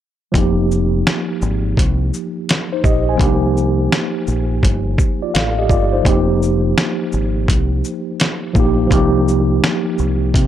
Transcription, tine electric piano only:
0.32 F3 A#3
0.36 D#4 G4
2.73 D#4 C5
2.85 G4 D#5
3.09 C5 G#5
3.16 F3 A#3 D4
3.22 G4
3.26 D#4
5.22 F4 D5
5.34 A4 F5
5.58 G4 D#5
5.70 F4 D5
5.92 D#4 C5
6.03 F3 A#3 D#4
6.09 G4
8.54 F3 A#3 D#4
8.59 G4
8.87 F3 A#3 D#4
8.93 G4

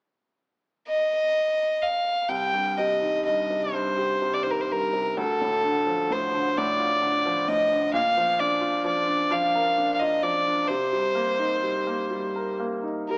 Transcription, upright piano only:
2.29 C2
2.53 G2
2.79 C3
3.02 D#3
3.27 G2
3.50 C3
3.73 G2
3.98 G4
4.22 C3
4.46 D#3
4.70 G2
4.93 C3
5.17 D2
5.41 A2
5.64 D3
5.87 F3
6.10 A2
6.35 D3
6.58 A2
6.80 F4
7.02 D3
7.26 F3
7.48 A2
7.72 D3
7.93 A#2
8.18 F3
8.40 D4
8.61 F4
8.85 F3
9.08 D4
9.31 F3
9.55 A#4
9.78 D4
10.01 F4
10.23 F3
10.46 D4
10.69 C3
10.92 G3
11.15 A#3
11.39 D#4
11.62 G3
11.87 A#3
12.11 G3
12.36 A#4
12.60 A#3
12.83 D#4
13.09 G3

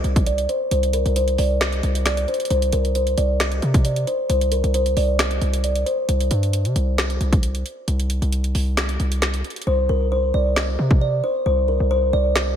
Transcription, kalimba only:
Already playing: D#5
0.27 D5
0.49 C5
0.71 C5
0.93 A#4
1.16 C5
1.38 D5
2.06 D5
2.28 C5
2.51 C5
2.73 A#4
2.95 C5
3.18 D5
3.85 D5
4.07 C5
4.29 C5
4.52 A#4
4.74 C5
4.97 D5
5.64 D5
5.86 C5
9.67 C5
9.89 A#4
10.12 C5
10.34 D5
10.56 D#5
11.01 D5
11.24 C5
11.46 C5
11.68 A#4
11.91 C5
12.13 D5
12.36 D#5

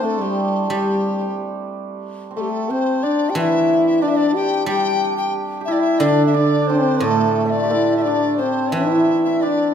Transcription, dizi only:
0.05 A4
0.22 G4
0.72 G4
2.36 A4
2.41 G4
2.50 A4
2.71 C5
3.03 D5
3.30 G5
3.36 E5
3.86 E5
4.02 D5
4.08 E5
4.17 D5
4.35 G5
4.67 G5
5.17 G5
5.65 E5
5.72 D5
5.80 E5
5.99 D5
6.26 E5
6.35 D5
6.67 C5
7.03 A4
7.46 E5
7.51 D5
7.97 E5
8.02 D5
8.37 C5
8.74 E5
9.24 E5
9.41 D5

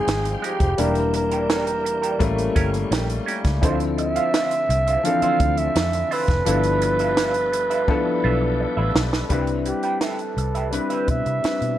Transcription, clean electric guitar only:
0.25 muted clean electric guitar stroke
0.42 G#3 D#4 G4
0.61 muted clean electric guitar stroke
0.78 D4 G4 A#4
1.14 muted clean electric guitar stroke
1.32 D4 G4 A#4
1.49 D4 G4 A#4
1.84 muted clean electric guitar stroke
2.02 D4 G4 A#4
2.56 C#4 G4 A#4
2.75 muted clean electric guitar stroke
2.91 C#4 G4 A#4
3.09 muted clean electric guitar stroke
3.26 C#4 G4 A#4
3.44 muted clean electric guitar stroke
3.62 F4 C5 E5
3.98 muted clean electric guitar stroke
4.16 F4 C5 F5
4.34 F4 C5 E5
4.69 muted clean electric guitar stroke
4.87 F4 C5 E5
5.05 muted clean electric guitar stroke
5.22 F4 C5 E5
5.40 muted clean electric guitar stroke
5.58 muted clean electric guitar stroke
5.94 muted clean electric guitar stroke
6.11 F4 C5 E5
6.29 muted clean electric guitar stroke
6.46 F4 B4 E5
6.82 muted clean electric guitar stroke
7.00 F4 B4 E5
7.17 F4 B4 E5
7.53 muted clean electric guitar stroke
7.70 F4 B4 E5
7.89 muted clean electric guitar stroke
8.24 F4 B4 E5
8.42 muted clean electric guitar stroke
8.59 muted clean electric guitar stroke
8.77 F4 B4 E5
8.95 muted clean electric guitar stroke
9.13 muted clean electric guitar stroke
9.31 G4 B4 E5
9.66 muted clean electric guitar stroke
9.84 G4 B4 G5
10.01 G4 B4 E5
10.37 muted clean electric guitar stroke
10.55 G4 B4 E5
10.73 muted clean electric guitar stroke
10.90 G4 B4 E5
11.25 muted clean electric guitar stroke
11.61 muted clean electric guitar stroke

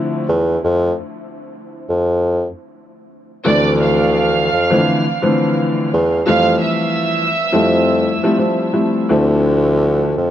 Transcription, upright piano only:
Already playing: D3 F3 A3 C4 E4
3.44 D3 E3 F3 A3 C4
4.70 D3 E3 F3 A3 C4
5.22 D3 E3 F3 A3 C4
6.26 E3 F3 G3 A3 C4
7.52 F3 G3 A3 C4 E4
8.23 F3 G3 A3 C4 E4
8.38 F3 G3 A3 C4 E4
8.73 F3 G3 A3 C4 E4
9.09 D3 F3 A3 C4 E4

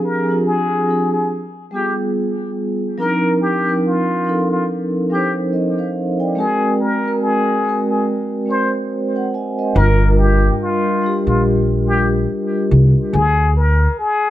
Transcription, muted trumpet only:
0.04 A#4
0.46 G#4
1.13 G#4
1.73 G4
3.00 A#4
3.41 G4
3.84 F4
4.51 F4
5.11 G4
6.38 G#4
6.80 A#4
7.22 G#4
7.90 G#4
8.49 C5
9.77 A#4
10.18 G4
10.61 F4
11.27 F4
11.88 G4
13.14 G#4
13.57 A#4
13.99 G#4

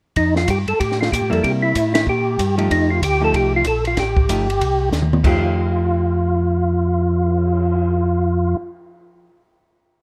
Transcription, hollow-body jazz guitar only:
1.30 G3 A#3 E4
2.58 F3 A3 D#4 G4
3.20 F3 A3 D#4 G4
4.29 F3 A3 D#4 G4
5.23 F3 A3 D#4 G4

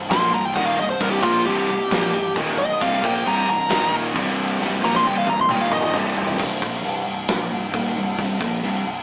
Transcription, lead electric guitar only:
0.11 C6
0.34 A#5
0.45 G5
0.55 F#5
0.66 F5
0.79 D#5
0.90 C5
1.02 A#4
1.10 G4
1.22 F4
1.46 G4
2.58 D#5
2.82 F5
3.06 G5
3.27 A#5
3.50 A#5
4.85 A#5
4.96 C6
5.07 G5
5.18 F5
5.30 A#5
5.41 C6
5.51 G5
5.61 F5
5.73 D#5

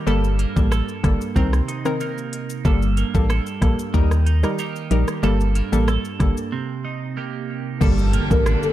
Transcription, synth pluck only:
0.07 G3 A#3 A4
0.56 G3 A#3 A4
1.04 G3 A#3 A4
1.36 D#3 C4 A#4
1.85 D#3 C4 A#4
2.65 G3 A#3 A4
3.14 G3 A#3 A4
3.61 G3 A#3 A4
3.94 G3 D#4 A#4
4.43 G3 D#4 A#4
4.91 G3 D#4 A#4
5.23 G3 A#3 A4
5.72 G3 A#3 A4
6.20 G3 A#3 A4
7.81 G3 A#3 A4
8.30 G3 A#3 A4

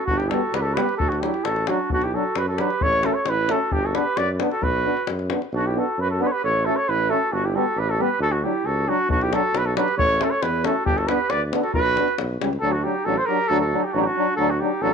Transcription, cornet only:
0.06 F#4
0.18 G4
0.29 A4
0.54 B4
0.62 A4
0.74 B4
0.97 A4
1.09 F#4
1.20 G4
1.44 A4
1.69 F#4
1.93 F#4
2.04 G4
2.15 A4
2.37 B4
2.48 A4
2.60 B4
2.82 C#5
3.06 A4
3.15 C#5
3.29 B4
3.51 A4
3.72 G4
3.85 A4
3.95 B4
4.17 D5
4.52 A4
4.63 B4
5.55 F#4
5.67 G4
5.79 A4
6.00 B4
6.10 A4
6.22 B4
6.27 C#5
6.32 B4
6.44 C#5
6.65 A4
6.76 C#5
6.89 B4
7.10 A4
7.33 F#4
7.45 G4
7.55 A4
7.79 B4
7.90 A4
8.01 B4
8.21 A4
8.32 F#4
8.43 G4
8.66 A4
8.89 F#4
9.11 F#4
9.22 G4
9.34 A4
9.57 B4
9.66 A4
9.77 B4
9.98 C#5
10.23 A4
10.31 C#5
10.42 B4
10.65 A4
10.86 G4
10.97 A4
11.07 B4
11.30 D5
11.62 A4
11.74 B4
12.60 A4
12.72 F#4
12.83 G4
13.05 A4
13.17 C5
13.26 A#4
13.47 A4
13.59 A4
13.84 G4
13.93 F#4
14.00 G4
14.06 F#4
14.36 A4
14.50 F#4
14.60 G4
14.82 A4

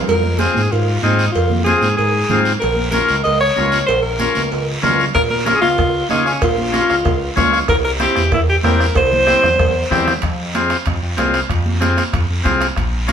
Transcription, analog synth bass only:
0.08 F2
0.57 G#2
0.73 G#2
1.04 G#2
1.36 F2
1.82 G#2
1.99 G#2
2.31 G#2
2.63 A#1
3.10 C#2
3.26 C#2
3.58 C#2
3.89 A#1
4.37 C#2
4.53 C#2
4.84 C#2
5.15 A#1
5.64 C#2
5.79 C#2
6.11 C#2
6.43 A#1
6.90 C#2
7.06 C#2
7.38 C#2
7.69 C2
8.17 E2
8.32 E2
8.64 E2
8.96 C2
9.44 E2
9.60 E2
9.92 E2
10.24 F2
10.87 F2
11.03 F2
11.18 C2
11.50 F2
12.14 F2
12.30 F2
12.46 C2
12.78 A#1

